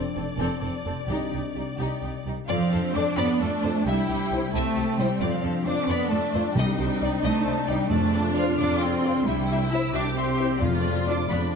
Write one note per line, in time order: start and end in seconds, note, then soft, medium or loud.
0.00 1.01 F3 soft
0.00 0.93 C4 soft
0.00 0.97 D4 soft
0.00 1.08 A4 soft
0.00 0.19 C5 soft
0.00 2.23 D5 medium
0.16 0.25 F1 soft
0.16 0.24 F2 soft
0.16 0.25 C4 soft
0.16 0.24 A4 soft
0.38 0.46 F1 medium
0.38 0.47 F2 medium
0.38 0.61 C4 medium
0.38 0.60 A4 medium
0.62 0.70 F1 soft
0.62 0.70 F2 soft
0.62 0.71 C4 soft
0.62 0.70 A4 soft
0.85 0.94 F1 soft
0.85 0.93 F2 soft
0.85 2.41 C3 soft
0.85 0.94 C4 soft
0.85 0.94 A4 soft
0.94 3.73 C4 soft
0.98 2.58 D4 soft
1.03 2.47 G4 soft
1.08 1.16 C2 medium
1.08 1.17 C2 soft
1.08 1.75 C3 medium
1.08 1.31 D#4 medium
1.08 1.29 G4 soft
1.31 1.40 C2 soft
1.31 1.41 D#4 soft
1.31 1.39 G4 soft
1.55 1.63 C2 soft
1.55 1.65 D#4 soft
1.55 1.63 G4 soft
1.78 1.87 C2 soft
1.78 2.01 D#4 soft
1.78 2.00 G4 soft
2.02 2.10 C2 soft
2.02 2.11 C2 soft
2.02 2.11 D#4 soft
2.02 2.10 G4 soft
2.26 2.34 C2 soft
2.26 2.35 C2 soft
2.26 2.36 D#4 soft
2.26 2.35 G4 soft
2.48 2.58 F2 medium
2.48 3.87 F3 medium
2.48 2.92 F3 medium
2.48 2.70 D5 medium
2.48 2.90 F5 medium
2.52 3.15 C4 medium
2.59 3.62 D4 medium
2.71 2.81 F2 medium
2.71 3.87 A4 medium
2.71 2.80 A4 medium
2.82 3.50 C5 medium
2.93 3.04 F2 medium
2.93 3.18 D4 medium
2.93 3.01 C5 medium
2.93 3.39 D5 medium
2.93 3.03 D6 medium
2.97 3.04 A4 medium
2.97 3.04 D5 medium
3.05 3.27 A5 medium
3.16 3.26 F2 medium
3.16 3.40 B3 loud
3.16 3.86 D4 medium
3.16 3.38 D5 medium
3.16 3.25 B5 medium
3.29 3.87 A5 medium
3.40 3.49 F2 medium
3.40 3.85 A3 medium
3.40 3.49 A4 medium
3.40 3.87 D5 medium
3.40 3.84 A5 medium
3.52 4.28 C5 medium
3.63 3.71 F2 medium
3.63 3.87 D4 soft
3.63 3.72 A4 medium
3.63 3.71 C5 medium
3.63 3.72 D5 medium
3.74 3.96 C4 medium
3.85 3.93 C2 medium
3.85 5.23 C3 medium
3.85 4.08 G3 medium
3.85 4.52 E4 medium
3.85 4.07 E5 medium
3.85 4.07 G5 medium
3.97 4.96 C4 soft
4.08 4.17 C2 soft
4.08 4.53 G3 medium
4.08 5.23 E4 medium
4.08 4.16 G4 medium
4.08 4.52 G5 medium
4.19 4.85 G4 medium
4.30 4.39 C2 medium
4.30 4.40 E4 medium
4.30 4.74 C5 medium
4.30 4.39 C5 soft
4.30 4.40 C5 medium
4.42 4.63 E5 medium
4.52 4.62 C2 medium
4.52 4.98 A3 loud
4.52 5.89 C4 medium
4.52 4.75 E5 medium
4.52 5.23 G5 medium
4.52 4.97 A5 medium
4.64 5.23 E5 medium
4.75 4.83 C2 soft
4.75 4.86 G4 soft
4.75 5.53 C5 medium
4.86 5.22 G4 medium
4.97 5.06 C2 medium
4.97 5.21 G3 medium
4.97 6.42 C4 soft
4.97 5.07 E4 medium
4.97 5.07 C5 medium
4.97 5.20 G5 medium
5.09 5.22 G3 soft
5.20 5.29 F2 medium
5.20 6.58 F3 medium
5.20 5.66 F3 medium
5.20 5.41 D5 medium
5.20 5.66 F5 medium
5.32 6.31 D4 soft
5.43 5.52 F2 soft
5.43 5.51 A4 medium
5.43 6.58 A4 medium
5.54 6.20 C5 medium
5.65 5.75 F2 medium
5.65 5.89 D4 medium
5.65 5.74 F4 medium
5.65 5.73 C5 medium
5.65 6.08 D5 medium
5.65 5.74 D5 medium
5.65 5.88 D6 medium
5.76 5.97 A5 medium
5.87 5.96 F2 medium
5.87 6.10 B3 loud
5.87 6.55 D4 medium
5.87 6.10 D5 medium
5.87 6.11 B5 medium
5.87 7.21 C6 medium
5.99 6.57 A5 medium
6.09 6.19 F2 medium
6.09 6.55 A3 medium
6.09 6.18 A4 medium
6.09 7.10 D5 medium
6.09 6.54 A5 medium
6.21 6.88 C5 soft
6.33 6.43 F2 medium
6.33 6.77 D4 soft
6.33 6.42 F4 medium
6.33 6.42 C5 medium
6.33 6.42 D5 medium
6.43 6.66 C4 soft
6.53 6.64 C2 medium
6.53 7.92 C3 medium
6.53 7.19 C3 medium
6.53 6.78 G3 medium
6.53 7.88 D#4 medium
6.53 6.77 G5 medium
6.58 6.78 D#5 medium
6.67 7.66 C4 soft
6.78 6.87 C2 medium
6.78 7.22 G3 medium
6.78 7.00 D4 medium
6.78 6.88 C5 medium
6.78 7.22 G5 medium
6.89 7.43 C5 medium
7.01 7.09 C2 medium
7.01 7.55 D4 medium
7.01 7.09 D#4 medium
7.01 7.09 D5 medium
7.01 7.11 D5 medium
7.11 7.32 D5 medium
7.22 7.31 C2 medium
7.22 7.67 A3 medium
7.22 7.44 D#5 medium
7.22 7.67 A5 medium
7.22 8.46 C6 medium
7.34 8.34 D5 medium
7.44 7.53 C2 medium
7.44 8.12 C5 medium
7.44 7.54 C5 medium
7.56 8.00 D4 medium
7.67 7.76 C2 medium
7.67 7.90 G3 medium
7.67 9.13 C4 medium
7.67 7.77 D#4 medium
7.67 7.76 D5 medium
7.67 7.77 D5 medium
7.67 7.90 G5 medium
7.79 7.92 G3 soft
7.90 8.54 F2 medium
7.90 8.50 F2 medium
7.90 9.27 F3 medium
7.90 8.36 A3 medium
7.90 8.57 D4 medium
7.90 7.99 D5 medium
7.90 8.34 A5 medium
8.01 8.23 D4 medium
8.13 8.90 C5 medium
8.13 8.21 D5 medium
8.24 9.01 D4 medium
8.35 8.58 F4 medium
8.35 8.45 F4 medium
8.35 8.45 C5 medium
8.35 8.56 D5 medium
8.35 8.44 D5 medium
8.35 8.58 F6 medium
8.57 9.18 F2 medium
8.57 8.80 D4 loud
8.57 9.24 F4 medium
8.57 8.78 D5 medium
8.57 8.68 D5 medium
8.57 8.80 D6 loud
8.68 9.92 C6 medium
8.79 9.25 C4 medium
8.79 8.87 D5 medium
8.79 9.25 C6 medium
8.91 9.58 C5 medium
9.02 9.27 D4 medium
9.02 9.13 F4 medium
9.02 9.12 C5 medium
9.02 9.12 D5 medium
9.14 9.35 C4 soft
9.25 9.86 C2 medium
9.25 10.62 C3 medium
9.25 9.71 G3 medium
9.25 9.92 E4 medium
9.25 9.35 E5 medium
9.25 9.71 G5 medium
9.37 10.37 C4 medium
9.48 9.70 E4 medium
9.48 9.59 E5 medium
9.59 10.15 C5 medium
9.71 9.93 E4 medium
9.71 10.27 E4 medium
9.71 9.80 E4 medium
9.71 9.80 C5 medium
9.71 9.81 E5 medium
9.71 9.93 E6 medium
9.82 10.03 E5 medium
9.93 10.53 C2 medium
9.93 10.02 D4 loud
9.93 10.61 G4 medium
9.93 10.02 E5 medium
9.93 11.55 C6 medium
9.93 10.16 D6 medium
10.04 10.62 E5 soft
10.16 10.60 C4 medium
10.16 11.55 C5 medium
10.16 10.24 E5 medium
10.16 10.62 C6 medium
10.28 10.63 E4 medium
10.37 11.55 C4 medium
10.37 10.47 E4 medium
10.37 10.47 C5 medium
10.37 10.45 E5 medium
10.50 10.63 G3 soft
10.58 11.21 F2 medium
10.58 11.26 F2 medium
10.58 11.07 F3 medium
10.58 11.55 F3 medium
10.58 11.28 F4 medium
10.58 10.66 D5 medium
10.63 11.07 F5 medium
10.73 11.55 F4 soft
10.80 10.88 D5 medium
10.80 11.55 D5 medium
10.96 11.55 A4 medium
11.06 11.16 D4 medium
11.06 11.17 F4 medium
11.06 11.14 D5 medium
11.06 11.17 D5 medium
11.06 11.52 F5 medium
11.06 11.30 D6 medium
11.19 11.40 D6 soft
11.29 11.55 F2 medium
11.29 11.38 B3 medium
11.29 11.55 D4 medium
11.29 11.39 D5 medium
11.29 11.55 A5 medium
11.29 11.53 B5 medium
11.41 11.55 D6 soft